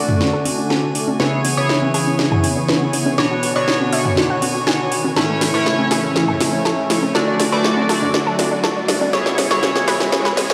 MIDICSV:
0, 0, Header, 1, 7, 480
1, 0, Start_track
1, 0, Tempo, 495868
1, 1161, Time_signature, 4, 2, 24, 8
1, 10200, End_track
2, 0, Start_track
2, 0, Title_t, "Synth texture"
2, 0, Program_c, 0, 99
2, 0, Note_on_c, 0, 80, 81
2, 10200, Note_off_c, 0, 80, 0
2, 10200, End_track
3, 0, Start_track
3, 0, Title_t, "Analog polysynth"
3, 0, Program_c, 1, 90
3, 0, Note_on_c, 1, 50, 75
3, 0, Note_on_c, 1, 57, 71
3, 0, Note_on_c, 1, 62, 70
3, 0, Note_on_c, 1, 66, 70
3, 0, Note_on_c, 1, 74, 82
3, 1132, Note_off_c, 1, 50, 0
3, 1132, Note_off_c, 1, 57, 0
3, 1132, Note_off_c, 1, 62, 0
3, 1132, Note_off_c, 1, 66, 0
3, 1132, Note_off_c, 1, 74, 0
3, 1159, Note_on_c, 1, 59, 81
3, 1160, Note_on_c, 1, 49, 82
3, 1160, Note_on_c, 1, 64, 74
3, 1160, Note_on_c, 1, 68, 79
3, 1160, Note_on_c, 1, 73, 96
3, 1494, Note_off_c, 1, 49, 0
3, 1494, Note_off_c, 1, 59, 0
3, 1494, Note_off_c, 1, 64, 0
3, 1494, Note_off_c, 1, 68, 0
3, 1494, Note_off_c, 1, 73, 0
3, 1523, Note_on_c, 1, 49, 96
3, 1523, Note_on_c, 1, 59, 88
3, 1523, Note_on_c, 1, 64, 91
3, 1523, Note_on_c, 1, 68, 87
3, 1524, Note_on_c, 1, 73, 110
3, 1852, Note_off_c, 1, 49, 0
3, 1852, Note_off_c, 1, 59, 0
3, 1852, Note_off_c, 1, 64, 0
3, 1852, Note_off_c, 1, 68, 0
3, 1852, Note_off_c, 1, 73, 0
3, 1880, Note_on_c, 1, 49, 76
3, 1880, Note_on_c, 1, 59, 68
3, 1880, Note_on_c, 1, 64, 72
3, 1880, Note_on_c, 1, 68, 67
3, 1880, Note_on_c, 1, 73, 83
3, 3052, Note_off_c, 1, 49, 0
3, 3052, Note_off_c, 1, 59, 0
3, 3052, Note_off_c, 1, 64, 0
3, 3052, Note_off_c, 1, 68, 0
3, 3052, Note_off_c, 1, 73, 0
3, 3079, Note_on_c, 1, 47, 85
3, 3079, Note_on_c, 1, 59, 76
3, 3079, Note_on_c, 1, 62, 79
3, 3080, Note_on_c, 1, 66, 81
3, 3080, Note_on_c, 1, 73, 98
3, 3414, Note_off_c, 1, 47, 0
3, 3414, Note_off_c, 1, 59, 0
3, 3414, Note_off_c, 1, 62, 0
3, 3414, Note_off_c, 1, 66, 0
3, 3414, Note_off_c, 1, 73, 0
3, 3443, Note_on_c, 1, 47, 101
3, 3443, Note_on_c, 1, 59, 89
3, 3443, Note_on_c, 1, 62, 92
3, 3443, Note_on_c, 1, 66, 89
3, 3443, Note_on_c, 1, 73, 111
3, 3772, Note_off_c, 1, 47, 0
3, 3772, Note_off_c, 1, 59, 0
3, 3772, Note_off_c, 1, 62, 0
3, 3772, Note_off_c, 1, 66, 0
3, 3772, Note_off_c, 1, 73, 0
3, 3800, Note_on_c, 1, 47, 74
3, 3800, Note_on_c, 1, 59, 69
3, 3800, Note_on_c, 1, 62, 66
3, 3800, Note_on_c, 1, 66, 70
3, 3800, Note_on_c, 1, 73, 83
3, 4972, Note_off_c, 1, 47, 0
3, 4972, Note_off_c, 1, 59, 0
3, 4972, Note_off_c, 1, 62, 0
3, 4972, Note_off_c, 1, 66, 0
3, 4972, Note_off_c, 1, 73, 0
3, 5000, Note_on_c, 1, 45, 85
3, 5000, Note_on_c, 1, 57, 77
3, 5000, Note_on_c, 1, 61, 74
3, 5000, Note_on_c, 1, 64, 81
3, 5000, Note_on_c, 1, 73, 93
3, 5334, Note_off_c, 1, 45, 0
3, 5334, Note_off_c, 1, 57, 0
3, 5334, Note_off_c, 1, 61, 0
3, 5334, Note_off_c, 1, 64, 0
3, 5334, Note_off_c, 1, 73, 0
3, 5363, Note_on_c, 1, 45, 98
3, 5363, Note_on_c, 1, 57, 90
3, 5363, Note_on_c, 1, 61, 93
3, 5363, Note_on_c, 1, 64, 92
3, 5363, Note_on_c, 1, 73, 109
3, 5692, Note_off_c, 1, 45, 0
3, 5692, Note_off_c, 1, 57, 0
3, 5692, Note_off_c, 1, 61, 0
3, 5692, Note_off_c, 1, 64, 0
3, 5692, Note_off_c, 1, 73, 0
3, 5719, Note_on_c, 1, 45, 78
3, 5719, Note_on_c, 1, 57, 70
3, 5719, Note_on_c, 1, 61, 71
3, 5719, Note_on_c, 1, 73, 86
3, 5720, Note_on_c, 1, 64, 68
3, 6892, Note_off_c, 1, 45, 0
3, 6892, Note_off_c, 1, 57, 0
3, 6892, Note_off_c, 1, 61, 0
3, 6892, Note_off_c, 1, 64, 0
3, 6892, Note_off_c, 1, 73, 0
3, 6919, Note_on_c, 1, 50, 88
3, 6919, Note_on_c, 1, 62, 78
3, 6919, Note_on_c, 1, 66, 75
3, 6919, Note_on_c, 1, 74, 93
3, 6920, Note_on_c, 1, 57, 81
3, 7254, Note_off_c, 1, 50, 0
3, 7254, Note_off_c, 1, 57, 0
3, 7254, Note_off_c, 1, 62, 0
3, 7254, Note_off_c, 1, 66, 0
3, 7254, Note_off_c, 1, 74, 0
3, 7283, Note_on_c, 1, 50, 100
3, 7283, Note_on_c, 1, 57, 94
3, 7283, Note_on_c, 1, 62, 94
3, 7283, Note_on_c, 1, 66, 96
3, 7283, Note_on_c, 1, 74, 114
3, 7612, Note_off_c, 1, 50, 0
3, 7612, Note_off_c, 1, 57, 0
3, 7612, Note_off_c, 1, 62, 0
3, 7612, Note_off_c, 1, 66, 0
3, 7612, Note_off_c, 1, 74, 0
3, 7639, Note_on_c, 1, 50, 81
3, 7639, Note_on_c, 1, 57, 68
3, 7639, Note_on_c, 1, 62, 71
3, 7639, Note_on_c, 1, 66, 74
3, 7639, Note_on_c, 1, 74, 85
3, 8812, Note_off_c, 1, 50, 0
3, 8812, Note_off_c, 1, 57, 0
3, 8812, Note_off_c, 1, 62, 0
3, 8812, Note_off_c, 1, 66, 0
3, 8812, Note_off_c, 1, 74, 0
3, 8839, Note_on_c, 1, 49, 85
3, 8839, Note_on_c, 1, 59, 76
3, 8839, Note_on_c, 1, 68, 81
3, 8839, Note_on_c, 1, 73, 98
3, 8840, Note_on_c, 1, 64, 78
3, 9174, Note_off_c, 1, 49, 0
3, 9174, Note_off_c, 1, 59, 0
3, 9174, Note_off_c, 1, 64, 0
3, 9174, Note_off_c, 1, 68, 0
3, 9174, Note_off_c, 1, 73, 0
3, 9203, Note_on_c, 1, 49, 100
3, 9203, Note_on_c, 1, 59, 94
3, 9203, Note_on_c, 1, 64, 91
3, 9203, Note_on_c, 1, 68, 88
3, 9203, Note_on_c, 1, 73, 108
3, 9532, Note_off_c, 1, 49, 0
3, 9532, Note_off_c, 1, 59, 0
3, 9532, Note_off_c, 1, 64, 0
3, 9532, Note_off_c, 1, 68, 0
3, 9532, Note_off_c, 1, 73, 0
3, 9559, Note_on_c, 1, 49, 76
3, 9559, Note_on_c, 1, 68, 74
3, 9560, Note_on_c, 1, 59, 71
3, 9560, Note_on_c, 1, 64, 70
3, 9560, Note_on_c, 1, 73, 82
3, 10200, Note_off_c, 1, 49, 0
3, 10200, Note_off_c, 1, 59, 0
3, 10200, Note_off_c, 1, 64, 0
3, 10200, Note_off_c, 1, 68, 0
3, 10200, Note_off_c, 1, 73, 0
3, 10200, End_track
4, 0, Start_track
4, 0, Title_t, "Synth arpeggio sound"
4, 0, Program_c, 2, 84
4, 83, Note_on_c, 2, 62, 61
4, 161, Note_off_c, 2, 62, 0
4, 200, Note_on_c, 2, 62, 63
4, 282, Note_off_c, 2, 62, 0
4, 323, Note_on_c, 2, 69, 89
4, 400, Note_off_c, 2, 69, 0
4, 440, Note_on_c, 2, 62, 65
4, 522, Note_off_c, 2, 62, 0
4, 563, Note_on_c, 2, 62, 62
4, 641, Note_off_c, 2, 62, 0
4, 679, Note_on_c, 2, 69, 91
4, 762, Note_off_c, 2, 69, 0
4, 803, Note_on_c, 2, 62, 63
4, 880, Note_off_c, 2, 62, 0
4, 919, Note_on_c, 2, 62, 61
4, 1002, Note_off_c, 2, 62, 0
4, 1043, Note_on_c, 2, 62, 61
4, 1121, Note_off_c, 2, 62, 0
4, 1159, Note_on_c, 2, 71, 93
4, 1241, Note_off_c, 2, 71, 0
4, 1283, Note_on_c, 2, 61, 58
4, 1361, Note_off_c, 2, 61, 0
4, 1400, Note_on_c, 2, 61, 63
4, 1482, Note_off_c, 2, 61, 0
4, 1523, Note_on_c, 2, 73, 90
4, 1601, Note_off_c, 2, 73, 0
4, 1639, Note_on_c, 2, 61, 62
4, 1721, Note_off_c, 2, 61, 0
4, 1763, Note_on_c, 2, 61, 64
4, 1840, Note_off_c, 2, 61, 0
4, 1879, Note_on_c, 2, 68, 98
4, 1962, Note_off_c, 2, 68, 0
4, 2003, Note_on_c, 2, 61, 63
4, 2081, Note_off_c, 2, 61, 0
4, 2120, Note_on_c, 2, 61, 64
4, 2202, Note_off_c, 2, 61, 0
4, 2243, Note_on_c, 2, 68, 86
4, 2320, Note_off_c, 2, 68, 0
4, 2360, Note_on_c, 2, 61, 66
4, 2442, Note_off_c, 2, 61, 0
4, 2483, Note_on_c, 2, 61, 65
4, 2561, Note_off_c, 2, 61, 0
4, 2599, Note_on_c, 2, 71, 94
4, 2682, Note_off_c, 2, 71, 0
4, 2723, Note_on_c, 2, 61, 65
4, 2801, Note_off_c, 2, 61, 0
4, 2840, Note_on_c, 2, 61, 61
4, 2922, Note_off_c, 2, 61, 0
4, 2963, Note_on_c, 2, 61, 63
4, 3041, Note_off_c, 2, 61, 0
4, 3079, Note_on_c, 2, 73, 103
4, 3162, Note_off_c, 2, 73, 0
4, 3203, Note_on_c, 2, 66, 62
4, 3280, Note_off_c, 2, 66, 0
4, 3319, Note_on_c, 2, 66, 65
4, 3402, Note_off_c, 2, 66, 0
4, 3443, Note_on_c, 2, 74, 85
4, 3521, Note_off_c, 2, 74, 0
4, 3560, Note_on_c, 2, 66, 61
4, 3642, Note_off_c, 2, 66, 0
4, 3684, Note_on_c, 2, 66, 66
4, 3761, Note_off_c, 2, 66, 0
4, 3800, Note_on_c, 2, 76, 95
4, 3882, Note_off_c, 2, 76, 0
4, 3923, Note_on_c, 2, 66, 63
4, 4000, Note_off_c, 2, 66, 0
4, 4039, Note_on_c, 2, 66, 66
4, 4122, Note_off_c, 2, 66, 0
4, 4163, Note_on_c, 2, 78, 88
4, 4241, Note_off_c, 2, 78, 0
4, 4280, Note_on_c, 2, 66, 68
4, 4362, Note_off_c, 2, 66, 0
4, 4403, Note_on_c, 2, 66, 67
4, 4480, Note_off_c, 2, 66, 0
4, 4519, Note_on_c, 2, 80, 92
4, 4601, Note_off_c, 2, 80, 0
4, 4642, Note_on_c, 2, 66, 65
4, 4720, Note_off_c, 2, 66, 0
4, 4759, Note_on_c, 2, 66, 66
4, 4841, Note_off_c, 2, 66, 0
4, 4882, Note_on_c, 2, 66, 62
4, 4960, Note_off_c, 2, 66, 0
4, 4999, Note_on_c, 2, 69, 97
4, 5081, Note_off_c, 2, 69, 0
4, 5122, Note_on_c, 2, 57, 59
4, 5200, Note_off_c, 2, 57, 0
4, 5238, Note_on_c, 2, 57, 67
4, 5321, Note_off_c, 2, 57, 0
4, 5362, Note_on_c, 2, 71, 88
4, 5440, Note_off_c, 2, 71, 0
4, 5479, Note_on_c, 2, 57, 65
4, 5562, Note_off_c, 2, 57, 0
4, 5602, Note_on_c, 2, 57, 68
4, 5680, Note_off_c, 2, 57, 0
4, 5719, Note_on_c, 2, 68, 91
4, 5802, Note_off_c, 2, 68, 0
4, 5843, Note_on_c, 2, 57, 60
4, 5920, Note_off_c, 2, 57, 0
4, 5959, Note_on_c, 2, 57, 64
4, 6042, Note_off_c, 2, 57, 0
4, 6082, Note_on_c, 2, 68, 90
4, 6160, Note_off_c, 2, 68, 0
4, 6199, Note_on_c, 2, 57, 63
4, 6282, Note_off_c, 2, 57, 0
4, 6322, Note_on_c, 2, 57, 68
4, 6400, Note_off_c, 2, 57, 0
4, 6439, Note_on_c, 2, 69, 92
4, 6521, Note_off_c, 2, 69, 0
4, 6563, Note_on_c, 2, 57, 64
4, 6640, Note_off_c, 2, 57, 0
4, 6679, Note_on_c, 2, 57, 65
4, 6761, Note_off_c, 2, 57, 0
4, 6803, Note_on_c, 2, 57, 66
4, 6880, Note_off_c, 2, 57, 0
4, 6919, Note_on_c, 2, 69, 105
4, 7002, Note_off_c, 2, 69, 0
4, 7043, Note_on_c, 2, 62, 61
4, 7121, Note_off_c, 2, 62, 0
4, 7160, Note_on_c, 2, 62, 64
4, 7242, Note_off_c, 2, 62, 0
4, 7283, Note_on_c, 2, 71, 96
4, 7361, Note_off_c, 2, 71, 0
4, 7400, Note_on_c, 2, 62, 65
4, 7482, Note_off_c, 2, 62, 0
4, 7524, Note_on_c, 2, 62, 67
4, 7601, Note_off_c, 2, 62, 0
4, 7640, Note_on_c, 2, 69, 95
4, 7722, Note_off_c, 2, 69, 0
4, 7764, Note_on_c, 2, 62, 63
4, 7841, Note_off_c, 2, 62, 0
4, 7880, Note_on_c, 2, 62, 68
4, 7962, Note_off_c, 2, 62, 0
4, 8003, Note_on_c, 2, 69, 90
4, 8081, Note_off_c, 2, 69, 0
4, 8120, Note_on_c, 2, 62, 64
4, 8202, Note_off_c, 2, 62, 0
4, 8243, Note_on_c, 2, 62, 67
4, 8321, Note_off_c, 2, 62, 0
4, 8359, Note_on_c, 2, 69, 95
4, 8442, Note_off_c, 2, 69, 0
4, 8483, Note_on_c, 2, 62, 62
4, 8561, Note_off_c, 2, 62, 0
4, 8600, Note_on_c, 2, 62, 66
4, 8682, Note_off_c, 2, 62, 0
4, 8724, Note_on_c, 2, 62, 66
4, 8801, Note_off_c, 2, 62, 0
4, 8840, Note_on_c, 2, 73, 98
4, 8922, Note_off_c, 2, 73, 0
4, 8963, Note_on_c, 2, 61, 60
4, 9041, Note_off_c, 2, 61, 0
4, 9080, Note_on_c, 2, 61, 66
4, 9162, Note_off_c, 2, 61, 0
4, 9203, Note_on_c, 2, 73, 93
4, 9281, Note_off_c, 2, 73, 0
4, 9320, Note_on_c, 2, 61, 65
4, 9402, Note_off_c, 2, 61, 0
4, 9443, Note_on_c, 2, 61, 68
4, 9521, Note_off_c, 2, 61, 0
4, 9560, Note_on_c, 2, 71, 92
4, 9642, Note_off_c, 2, 71, 0
4, 9684, Note_on_c, 2, 61, 61
4, 9761, Note_off_c, 2, 61, 0
4, 9800, Note_on_c, 2, 61, 66
4, 9882, Note_off_c, 2, 61, 0
4, 9924, Note_on_c, 2, 71, 89
4, 10001, Note_off_c, 2, 71, 0
4, 10040, Note_on_c, 2, 61, 66
4, 10122, Note_off_c, 2, 61, 0
4, 10164, Note_on_c, 2, 61, 68
4, 10200, Note_off_c, 2, 61, 0
4, 10200, End_track
5, 0, Start_track
5, 0, Title_t, "Supersaw synth"
5, 0, Program_c, 3, 81
5, 0, Note_on_c, 3, 50, 81
5, 0, Note_on_c, 3, 57, 79
5, 0, Note_on_c, 3, 66, 80
5, 0, Note_on_c, 3, 69, 91
5, 1122, Note_off_c, 3, 57, 0
5, 1122, Note_off_c, 3, 69, 0
5, 1141, Note_off_c, 3, 50, 0
5, 1141, Note_off_c, 3, 66, 0
5, 1161, Note_on_c, 3, 52, 86
5, 1161, Note_on_c, 3, 59, 76
5, 1161, Note_on_c, 3, 68, 77
5, 1161, Note_on_c, 3, 73, 90
5, 3061, Note_off_c, 3, 52, 0
5, 3061, Note_off_c, 3, 68, 0
5, 3080, Note_on_c, 3, 50, 84
5, 3081, Note_on_c, 3, 66, 79
5, 4962, Note_off_c, 3, 59, 0
5, 4981, Note_off_c, 3, 50, 0
5, 4981, Note_off_c, 3, 66, 0
5, 5000, Note_on_c, 3, 49, 88
5, 5000, Note_on_c, 3, 57, 80
5, 5000, Note_on_c, 3, 64, 76
5, 6882, Note_off_c, 3, 73, 0
5, 6901, Note_off_c, 3, 49, 0
5, 6901, Note_off_c, 3, 64, 0
5, 6919, Note_on_c, 3, 66, 76
5, 6920, Note_on_c, 3, 50, 90
5, 6920, Note_on_c, 3, 74, 90
5, 8801, Note_off_c, 3, 57, 0
5, 8821, Note_off_c, 3, 50, 0
5, 8821, Note_off_c, 3, 66, 0
5, 8821, Note_off_c, 3, 74, 0
5, 8839, Note_on_c, 3, 52, 89
5, 8839, Note_on_c, 3, 59, 79
5, 8839, Note_on_c, 3, 68, 80
5, 8839, Note_on_c, 3, 73, 93
5, 10200, Note_off_c, 3, 52, 0
5, 10200, Note_off_c, 3, 59, 0
5, 10200, Note_off_c, 3, 68, 0
5, 10200, Note_off_c, 3, 73, 0
5, 10200, End_track
6, 0, Start_track
6, 0, Title_t, "Riser"
6, 0, Program_c, 4, 103
6, 0, Note_on_c, 4, 60, 72
6, 10200, Note_off_c, 4, 60, 0
6, 10200, End_track
7, 0, Start_track
7, 0, Title_t, "Drums"
7, 82, Note_on_c, 9, 45, 86
7, 179, Note_off_c, 9, 45, 0
7, 200, Note_on_c, 9, 38, 55
7, 297, Note_off_c, 9, 38, 0
7, 439, Note_on_c, 9, 63, 64
7, 440, Note_on_c, 9, 46, 103
7, 536, Note_off_c, 9, 63, 0
7, 537, Note_off_c, 9, 46, 0
7, 680, Note_on_c, 9, 38, 54
7, 777, Note_off_c, 9, 38, 0
7, 920, Note_on_c, 9, 46, 93
7, 1017, Note_off_c, 9, 46, 0
7, 1042, Note_on_c, 9, 63, 95
7, 1139, Note_off_c, 9, 63, 0
7, 1160, Note_on_c, 9, 38, 58
7, 1256, Note_off_c, 9, 38, 0
7, 1400, Note_on_c, 9, 46, 111
7, 1497, Note_off_c, 9, 46, 0
7, 1640, Note_on_c, 9, 38, 61
7, 1737, Note_off_c, 9, 38, 0
7, 1763, Note_on_c, 9, 63, 91
7, 1860, Note_off_c, 9, 63, 0
7, 1880, Note_on_c, 9, 46, 93
7, 1977, Note_off_c, 9, 46, 0
7, 2120, Note_on_c, 9, 38, 60
7, 2216, Note_off_c, 9, 38, 0
7, 2243, Note_on_c, 9, 45, 87
7, 2339, Note_off_c, 9, 45, 0
7, 2359, Note_on_c, 9, 46, 100
7, 2359, Note_on_c, 9, 63, 66
7, 2456, Note_off_c, 9, 46, 0
7, 2456, Note_off_c, 9, 63, 0
7, 2599, Note_on_c, 9, 38, 63
7, 2696, Note_off_c, 9, 38, 0
7, 2839, Note_on_c, 9, 46, 92
7, 2936, Note_off_c, 9, 46, 0
7, 2962, Note_on_c, 9, 63, 94
7, 3059, Note_off_c, 9, 63, 0
7, 3079, Note_on_c, 9, 38, 63
7, 3176, Note_off_c, 9, 38, 0
7, 3320, Note_on_c, 9, 46, 110
7, 3417, Note_off_c, 9, 46, 0
7, 3560, Note_on_c, 9, 38, 63
7, 3656, Note_off_c, 9, 38, 0
7, 3683, Note_on_c, 9, 63, 88
7, 3780, Note_off_c, 9, 63, 0
7, 3799, Note_on_c, 9, 46, 96
7, 3896, Note_off_c, 9, 46, 0
7, 3923, Note_on_c, 9, 45, 90
7, 4020, Note_off_c, 9, 45, 0
7, 4040, Note_on_c, 9, 38, 69
7, 4136, Note_off_c, 9, 38, 0
7, 4279, Note_on_c, 9, 46, 103
7, 4279, Note_on_c, 9, 63, 63
7, 4376, Note_off_c, 9, 46, 0
7, 4376, Note_off_c, 9, 63, 0
7, 4519, Note_on_c, 9, 38, 70
7, 4616, Note_off_c, 9, 38, 0
7, 4760, Note_on_c, 9, 46, 92
7, 4856, Note_off_c, 9, 46, 0
7, 4883, Note_on_c, 9, 63, 86
7, 4980, Note_off_c, 9, 63, 0
7, 5000, Note_on_c, 9, 38, 73
7, 5096, Note_off_c, 9, 38, 0
7, 5240, Note_on_c, 9, 38, 79
7, 5240, Note_on_c, 9, 46, 105
7, 5336, Note_off_c, 9, 38, 0
7, 5336, Note_off_c, 9, 46, 0
7, 5480, Note_on_c, 9, 38, 74
7, 5576, Note_off_c, 9, 38, 0
7, 5602, Note_on_c, 9, 63, 87
7, 5699, Note_off_c, 9, 63, 0
7, 5720, Note_on_c, 9, 38, 76
7, 5720, Note_on_c, 9, 46, 92
7, 5817, Note_off_c, 9, 38, 0
7, 5817, Note_off_c, 9, 46, 0
7, 5960, Note_on_c, 9, 38, 77
7, 6057, Note_off_c, 9, 38, 0
7, 6082, Note_on_c, 9, 45, 82
7, 6179, Note_off_c, 9, 45, 0
7, 6198, Note_on_c, 9, 63, 63
7, 6200, Note_on_c, 9, 38, 77
7, 6200, Note_on_c, 9, 46, 104
7, 6295, Note_off_c, 9, 63, 0
7, 6297, Note_off_c, 9, 38, 0
7, 6297, Note_off_c, 9, 46, 0
7, 6439, Note_on_c, 9, 38, 81
7, 6536, Note_off_c, 9, 38, 0
7, 6679, Note_on_c, 9, 38, 81
7, 6679, Note_on_c, 9, 46, 92
7, 6776, Note_off_c, 9, 38, 0
7, 6776, Note_off_c, 9, 46, 0
7, 6802, Note_on_c, 9, 63, 87
7, 6899, Note_off_c, 9, 63, 0
7, 6919, Note_on_c, 9, 38, 83
7, 7016, Note_off_c, 9, 38, 0
7, 7159, Note_on_c, 9, 38, 85
7, 7159, Note_on_c, 9, 46, 103
7, 7256, Note_off_c, 9, 38, 0
7, 7256, Note_off_c, 9, 46, 0
7, 7400, Note_on_c, 9, 38, 85
7, 7497, Note_off_c, 9, 38, 0
7, 7522, Note_on_c, 9, 63, 90
7, 7619, Note_off_c, 9, 63, 0
7, 7640, Note_on_c, 9, 38, 88
7, 7640, Note_on_c, 9, 46, 94
7, 7737, Note_off_c, 9, 38, 0
7, 7737, Note_off_c, 9, 46, 0
7, 7762, Note_on_c, 9, 45, 85
7, 7859, Note_off_c, 9, 45, 0
7, 7880, Note_on_c, 9, 38, 87
7, 7977, Note_off_c, 9, 38, 0
7, 8119, Note_on_c, 9, 63, 61
7, 8120, Note_on_c, 9, 38, 84
7, 8120, Note_on_c, 9, 46, 94
7, 8216, Note_off_c, 9, 38, 0
7, 8216, Note_off_c, 9, 46, 0
7, 8216, Note_off_c, 9, 63, 0
7, 8360, Note_on_c, 9, 38, 87
7, 8457, Note_off_c, 9, 38, 0
7, 8600, Note_on_c, 9, 38, 89
7, 8600, Note_on_c, 9, 46, 88
7, 8697, Note_off_c, 9, 38, 0
7, 8697, Note_off_c, 9, 46, 0
7, 8723, Note_on_c, 9, 63, 88
7, 8819, Note_off_c, 9, 63, 0
7, 8840, Note_on_c, 9, 38, 86
7, 8937, Note_off_c, 9, 38, 0
7, 8963, Note_on_c, 9, 38, 77
7, 9060, Note_off_c, 9, 38, 0
7, 9080, Note_on_c, 9, 38, 96
7, 9080, Note_on_c, 9, 46, 110
7, 9177, Note_off_c, 9, 38, 0
7, 9177, Note_off_c, 9, 46, 0
7, 9204, Note_on_c, 9, 38, 85
7, 9301, Note_off_c, 9, 38, 0
7, 9320, Note_on_c, 9, 38, 95
7, 9417, Note_off_c, 9, 38, 0
7, 9443, Note_on_c, 9, 63, 93
7, 9444, Note_on_c, 9, 38, 83
7, 9540, Note_off_c, 9, 63, 0
7, 9541, Note_off_c, 9, 38, 0
7, 9560, Note_on_c, 9, 38, 95
7, 9560, Note_on_c, 9, 46, 86
7, 9657, Note_off_c, 9, 38, 0
7, 9657, Note_off_c, 9, 46, 0
7, 9684, Note_on_c, 9, 38, 82
7, 9781, Note_off_c, 9, 38, 0
7, 9800, Note_on_c, 9, 38, 98
7, 9897, Note_off_c, 9, 38, 0
7, 9923, Note_on_c, 9, 45, 78
7, 9924, Note_on_c, 9, 38, 78
7, 10019, Note_off_c, 9, 45, 0
7, 10020, Note_off_c, 9, 38, 0
7, 10039, Note_on_c, 9, 63, 63
7, 10040, Note_on_c, 9, 38, 92
7, 10040, Note_on_c, 9, 46, 99
7, 10136, Note_off_c, 9, 63, 0
7, 10137, Note_off_c, 9, 38, 0
7, 10137, Note_off_c, 9, 46, 0
7, 10164, Note_on_c, 9, 38, 91
7, 10200, Note_off_c, 9, 38, 0
7, 10200, End_track
0, 0, End_of_file